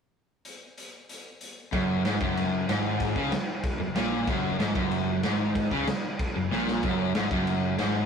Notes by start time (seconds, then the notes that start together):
0.45 closed hi-hat
0.78 closed hi-hat
1.09 closed hi-hat
1.41 closed hi-hat
1.72 F#1 F#2, kick, crash
2.05 G#1 G#2, snare, crash
2.20 F#1 F#2, kick
2.37 crash
2.69 G#1 G#2, snare, crash
3.00 kick, crash
3.16 C#2 C#3, kick
3.32 snare, crash
3.64 kick, crash
3.80 F#1 F#2
3.95 A#1 A#2, snare, crash
4.27 F#1 F#2, kick, crash
4.59 G#1 G#2, snare, crash
4.75 F#1 F#2, kick
4.91 crash
5.23 G#1 G#2, snare, crash
5.55 kick, crash
5.71 C#2 C#3, kick
5.87 snare, crash
6.19 kick, crash
6.36 F#1 F#2
6.52 A#1 A#2, snare
6.67 snare
6.83 F#1 F#2, kick, crash
7.15 G#1 G#2, snare, crash
7.31 F#1 F#2, kick
7.47 crash
7.78 G#1 G#2, snare, crash